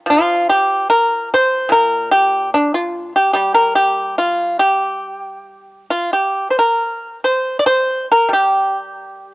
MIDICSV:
0, 0, Header, 1, 2, 480
1, 0, Start_track
1, 0, Tempo, 808625
1, 53, Time_signature, 4, 2, 24, 8
1, 1491, Tempo, 833333
1, 2451, Tempo, 841515
1, 2931, Tempo, 877193
1, 4371, Tempo, 840336
1, 5337, End_track
2, 0, Start_track
2, 0, Title_t, "Pipa"
2, 0, Program_c, 0, 105
2, 36, Note_on_c, 0, 53, 53
2, 60, Note_on_c, 0, 65, 85
2, 285, Note_off_c, 0, 65, 0
2, 294, Note_on_c, 0, 67, 74
2, 522, Note_off_c, 0, 67, 0
2, 533, Note_on_c, 0, 70, 72
2, 759, Note_off_c, 0, 70, 0
2, 794, Note_on_c, 0, 72, 72
2, 1001, Note_off_c, 0, 53, 0
2, 1003, Note_on_c, 0, 46, 47
2, 1006, Note_off_c, 0, 72, 0
2, 1021, Note_on_c, 0, 70, 75
2, 1237, Note_off_c, 0, 70, 0
2, 1255, Note_on_c, 0, 67, 67
2, 1478, Note_off_c, 0, 67, 0
2, 1508, Note_on_c, 0, 62, 69
2, 1611, Note_off_c, 0, 62, 0
2, 1624, Note_on_c, 0, 65, 60
2, 1840, Note_off_c, 0, 65, 0
2, 1863, Note_on_c, 0, 67, 59
2, 1957, Note_off_c, 0, 67, 0
2, 1964, Note_on_c, 0, 67, 65
2, 1970, Note_on_c, 0, 55, 43
2, 2079, Note_off_c, 0, 67, 0
2, 2086, Note_on_c, 0, 70, 61
2, 2200, Note_off_c, 0, 70, 0
2, 2206, Note_on_c, 0, 67, 58
2, 2432, Note_off_c, 0, 67, 0
2, 2446, Note_off_c, 0, 46, 0
2, 2453, Note_on_c, 0, 65, 58
2, 2674, Note_off_c, 0, 65, 0
2, 2688, Note_on_c, 0, 67, 60
2, 3386, Note_off_c, 0, 67, 0
2, 3409, Note_off_c, 0, 55, 0
2, 3415, Note_on_c, 0, 65, 56
2, 3526, Note_off_c, 0, 65, 0
2, 3538, Note_on_c, 0, 67, 51
2, 3724, Note_off_c, 0, 67, 0
2, 3744, Note_on_c, 0, 72, 37
2, 3778, Note_off_c, 0, 72, 0
2, 3789, Note_on_c, 0, 70, 54
2, 4119, Note_off_c, 0, 70, 0
2, 4147, Note_on_c, 0, 72, 59
2, 4326, Note_off_c, 0, 72, 0
2, 4338, Note_on_c, 0, 74, 47
2, 4374, Note_off_c, 0, 74, 0
2, 4377, Note_on_c, 0, 72, 64
2, 4603, Note_off_c, 0, 72, 0
2, 4636, Note_on_c, 0, 70, 62
2, 4733, Note_on_c, 0, 55, 41
2, 4740, Note_off_c, 0, 70, 0
2, 4759, Note_on_c, 0, 67, 60
2, 5320, Note_off_c, 0, 67, 0
2, 5337, Note_off_c, 0, 55, 0
2, 5337, End_track
0, 0, End_of_file